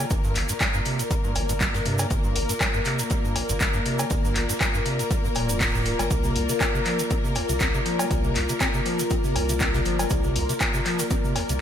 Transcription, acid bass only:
0.11 G2
0.24 G2
0.36 G1
0.49 G2
0.61 G3
0.74 G2
0.86 C3
0.99 G2
1.11 G3
1.24 G2
1.36 G1
1.49 G2
1.61 G3
1.74 G2
1.86 C3
1.99 D3
2.11 G2
2.24 G2
2.36 G1
2.49 G2
2.61 G3
2.74 G2
2.86 C3
2.99 G2
3.11 G3
3.24 G2
3.36 G1
3.49 G2
3.61 G3
3.74 G2
3.86 C3
3.99 D3
4.11 G2
4.24 G2
4.36 G1
4.49 G2
4.61 G3
4.74 G2
4.86 C3
4.99 G2
5.11 G3
5.24 G2
5.36 A#2
5.49 F2
5.61 A#2
5.74 A2
5.86 G2
5.99 G3
6.11 C3
6.24 C3
6.36 C2
6.49 C3
6.61 C4
6.74 C3
6.86 F3
6.99 C3
7.11 C4
7.24 C3
7.36 C2
7.49 C3
7.61 C4
7.74 C3
7.86 F3
7.99 G3
8.11 C3
8.24 C3
8.36 C2
8.49 C3
8.61 C4
8.74 C3
8.86 F3
8.99 C3
9.11 C4
9.24 C3
9.36 C2
9.49 C3
9.61 C4
9.74 C3
9.86 F3
9.99 G3
10.11 C3
10.24 C3
10.36 C2
10.49 C3
10.61 C4
10.74 C3
10.86 F3
10.99 C3
11.11 C4
11.24 C3
11.36 C2
11.49 C3

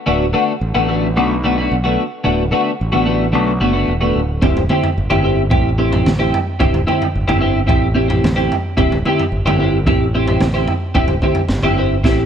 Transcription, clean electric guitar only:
0.06 D3 A3 B3 F#4
0.33 D3 A3 B3 F#4
0.75 D3 A3 B3 F#4
0.88 D3 A3 B3 F#4
1.16 D3 A3 B3 F#4
1.44 D3 A3 B3 F#4
1.58 D3 A3 B3 F#4
1.84 D3 A3 B3 F#4
2.24 D3 A3 B3 F#4
2.51 D3 A3 B3 F#4
2.92 D3 A3 B3 F#4
3.05 D3 A3 B3 F#4
3.32 D3 A3 B3 F#4
3.60 D3 A3 B3 F#4
3.73 D3 A3 B3 F#4
4.01 D3 A3 B3 F#4
4.42 C4 E4 G4 C5
4.70 C4 E4 G4 C5
5.10 C4 E4 G4 C5
5.23 C4 E4 G4 C5
5.50 C4 E4 G4 C5
5.78 C4 E4 G4 C5
5.92 C4 E4 G4 C5
6.19 C4 E4 G4 C5
6.60 C4 E4 G4 C5
6.87 C4 E4 G4 C5
7.28 C4 E4 G4 C5
7.41 C4 E4 G4 C5
7.67 C4 E4 G4 C5
7.95 C4 E4 G4 C5
8.08 C4 E4 G4 C5
8.36 C4 E4 G4 C5
8.77 C4 E4 G4 C5
9.06 C4 E4 G4 C5
9.46 C4 E4 G4 C5
9.59 C4 E4 G4 C5
9.86 C4 E4 G4 C5
10.14 C4 E4 G4 C5
10.27 C4 E4 G4 C5
10.54 C4 E4 G4 C5
10.95 C4 E4 G4 C5
11.23 C4 E4 G4 C5
11.63 C4 E4 G4 C5
11.78 C4 E4 G4 C5
12.04 C4 E4 G4 C5

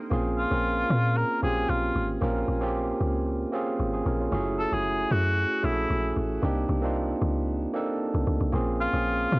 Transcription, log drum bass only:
0.11 A#1
0.51 A#1
0.90 A#2
1.43 A#1
1.69 A#1
1.95 G#1
2.22 A#1
2.48 A#1
3.01 C#2
3.80 G#1
4.06 A#1
4.32 F#1
4.72 F#1
5.11 F#2
5.64 A#1
5.90 A#1
6.16 A1
6.43 C2
6.69 C2
7.22 C#2
8.15 C2
8.27 C#2
8.41 C2
8.53 A#1
8.93 A#1
9.32 A#2

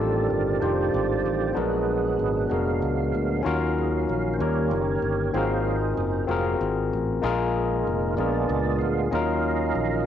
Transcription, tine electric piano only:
Already playing: A2 D4 D#4 F4 G4 A4
0.60 D4 D#4 F4 G4
0.64 C5
1.53 A#2 B3 D4 F#4 G#4 A#4
2.50 B3 D4 F#4 G#4 A#4
3.43 D#3 C#4 D#4 F4 F#4 A#4
4.38 D#3 A#3 C#4 D#4 G4 A#4
5.34 G#2 C4 F4 F#4 G#4 A#4
6.27 C4 F4 F#4 G#4 A#4
7.22 A#2 A#3 D#4 F4 G#4 A#4
8.16 A#2 B3 D4 F4 G#4
8.20 A#4
9.11 D#3 C#4 D#4 F4 F#4
9.15 A#4

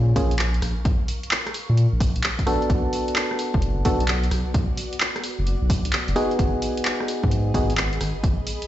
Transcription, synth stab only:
Already playing: A#3 C#4 F4 G#4
0.16 A#3 C#4 F4 G#4
2.47 B3 D4 F#4 A4
3.85 B3 D4 F#4 A4
6.16 B3 D#4 F#4 G#4
7.54 B3 D#4 F#4 G#4

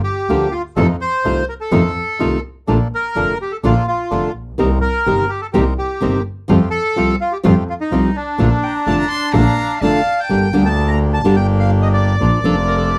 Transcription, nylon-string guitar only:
0.30 D3 F3 A#3 D4 G4
0.76 C3 D#3 A3 C4 F4
1.25 C3 D#3 A3 C4 F4
1.71 C3 D#3 A3 C4 F4
2.19 C3 D#3 A3 C4 F4
2.67 D3 A3 D4 F4
3.16 D3 A3 D4 F4
3.63 D3 A3 D4 F4
4.11 D3 A3 D4 F4
4.58 C3 D#3 A#3 C4 G4
5.06 C3 D#3 A#3 C4 G4
5.54 C3 D#3 A#3 C4 G4
6.01 C3 D#3 A#3 C4 G4
6.48 F3 G3 C4 F4
6.96 F3 G3 C4 F4
7.43 F3 G3 C4 F4
7.92 F3 G3 C4 F4
8.38 D3 A3 D4 F4
8.87 D3 A3 D4 F4
9.34 D3 A3 D4 F4
9.83 D3 A3 D4 F4
10.29 D3 G3 A#3 D4 G4
10.53 D3 G3 A#3 D4 G4
11.24 D3 G3 A#3 D4 G4
12.21 F3 A#3 D4 F4
12.44 F3 A#3 D4 F4

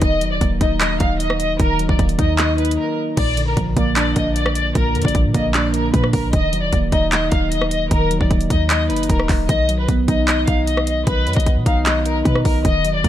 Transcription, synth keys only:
0.02 D#3
0.21 F#3
0.41 A#3
0.61 D#4
0.81 D#5
1.00 D#4
1.60 D#3
1.79 F#3
1.99 A#3
2.19 D#4
2.38 D#5
2.58 D#4
3.17 A#2
3.37 D3
3.57 F3
3.77 A#3
3.96 D4
4.16 A#3
4.75 A#2
4.95 D3
5.15 F3
5.34 A#3
5.54 D4
5.74 A#3
6.33 D#3
6.53 F#3
6.73 A#3
6.92 D#4
7.12 D#5
7.32 D#4
7.91 D#3
8.11 F#3
8.30 A#3
8.50 D#4
8.70 D#5
8.90 D#4
9.49 D#3
9.69 F#3
9.88 B3
10.08 D#4
10.28 D#5
10.48 D#4
11.07 D#3
11.27 F#3
11.46 B3
11.66 D#4
11.86 D#5
12.06 D#4
12.65 D#3
12.85 F#3
13.04 A#3

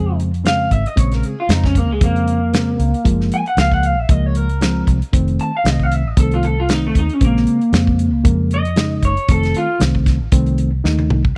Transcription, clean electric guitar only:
Already playing: G#4
0.46 F5
0.72 E5
0.87 D#5
0.99 C#5
1.13 A#4
1.25 G#4
1.40 F4
1.51 D#4
1.65 C#4
1.77 A#3
1.92 G#3
2.04 A#3
3.34 G#5
3.48 F#5
3.59 F5
3.73 F#5
3.85 F5
4.00 E5
4.11 D#5
4.26 C#5
4.37 A#4
5.41 A5
5.57 F5
5.68 D#5
5.83 F5
5.94 E5
6.07 D#5
6.20 A4
6.34 F4
6.45 A4
6.60 F4
6.72 D#4
6.87 A3
6.99 D#4
7.14 C#4
7.25 A#3
8.54 D#5
9.05 C#5
9.31 A4
9.57 F4

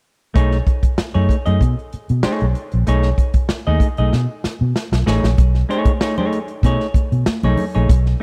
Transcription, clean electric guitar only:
0.34 A3 D#4 G#4 C#5
1.14 A3 D#4 G#4 C#5
1.46 A3 D#4 G#4 D#5
2.23 A3 D#4 G#4 C#5
2.87 A3 D#4 G#4 C#5
3.67 A3 D#4 G#4 D#5
3.98 A3 D#4 G#4 D#5
5.06 A3 D#4 G#4 C#5
5.69 A3 D#4 G#4 C#5
6.01 A3 D#4 G#4 C#5
6.18 A3 D#4 G#4 C#5
6.64 A3 D#4 G#4 C#5
7.44 A3 D#4 G#4 C#5
7.75 A3 D#4 G#4 C#5

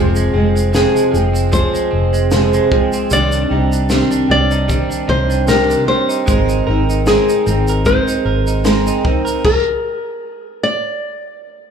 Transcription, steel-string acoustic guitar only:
Already playing: F2 C3 F3 G#3 C4 G#4
0.34 F3 G#3 C4 G#4
0.73 F2 C3 F3 G#3 C4 G#4
1.13 F3 G#3 C4 G#4
1.52 F3 G#3 C4 G#4
2.31 F2 C3 F3 G#3 C4 G#4
2.71 F3 G#3 C4 G#4
3.10 C3 D#3 C4 D4 G4
3.50 C4 D4 G4
3.89 C3 D#3 C4 D4 G4
4.29 C4 D4 G4
4.68 D#3 C4 D4 G4
5.48 C3 D#3 C4 D4 G4
5.86 C4 D4 G4
6.27 G#3 C4 D#4 A#4
6.66 C4 D#4 A#4
7.06 G#3 C4 D#4 A#4
7.46 C4 D#4 A#4
7.85 G#3 C4 D#4 A#4
8.64 G#3 C4 D#4 A#4
9.02 C4 D#4 A#4

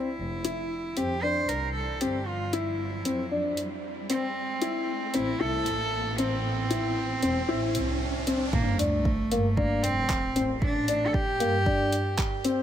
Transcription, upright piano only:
0.45 E4
0.97 C4
1.23 D4
2.01 C4
2.53 E4
3.05 C4
3.31 D4
4.10 C4
4.62 E4
5.14 C4
5.40 E4
6.18 C4
6.70 E4
7.23 C4
7.49 E4
8.27 C4
8.79 D4
9.31 A#3
9.57 D4
10.36 C4
10.88 D4
11.40 A#3
11.66 D4
12.45 C4

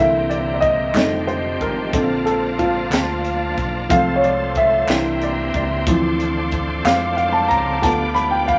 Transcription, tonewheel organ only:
Already playing: E3 A#3 C4 G4
0.94 F3 G3 C4 G4
1.93 F3 A#3 D4 G4
2.00 F4
3.89 F3 A3 C4 A4
4.88 E3 A#3 C4 G4
5.86 A3 C4 D4 C5
7.81 F3 B3 D4 G4

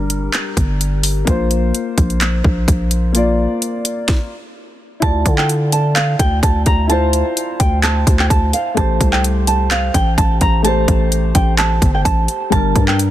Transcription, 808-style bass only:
Already playing: G1
0.57 G1
1.27 A#1
1.98 A#1
2.44 A#1
2.68 A#1
5.02 D2
5.26 D3
6.19 D2
6.43 D2
6.66 D2
7.60 D2
8.07 D2
8.30 D2
8.77 A1
9.01 C2
9.94 A1
10.18 A1
10.41 A1
10.88 A1
11.35 A1
11.82 G1
12.05 A1
12.52 G1
12.76 G2

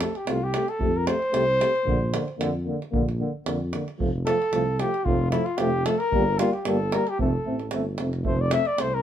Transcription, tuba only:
0.27 C2
0.79 F2
1.33 C2
1.86 A#1
2.39 F2
2.92 A#1
3.46 F2
4.00 F1
4.52 C2
5.05 F1
5.59 F1
6.13 G1
6.67 G1
7.20 F1
7.47 A1
7.72 G1
8.00 F1
8.26 F1
8.81 C2

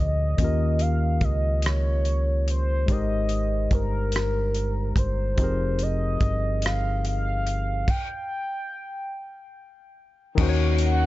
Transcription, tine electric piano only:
Already playing: A#2 D3 F3 G#4 C5
0.37 D#3 A#3 C#4
0.42 F4 G4 A#4
2.86 G#3 D#4 G4
2.91 A#4 C5
5.36 F3 C4 D#4
5.40 G4 G#4 A#4
10.35 D#3 C#4 D#4
10.41 F#4 C5
10.49 C#5

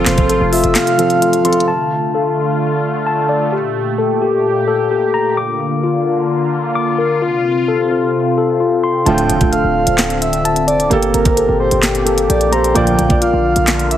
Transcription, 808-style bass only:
0.06 F1
0.29 A1
0.41 F1
0.64 F1
9.06 D1
9.29 D1
9.64 D1
9.87 D1
10.68 F1
10.80 D1
10.91 G1
11.14 G1
11.49 G1
11.72 G1
12.29 A#1
12.76 A#1
12.99 A#1
13.33 A#1
13.56 A#1

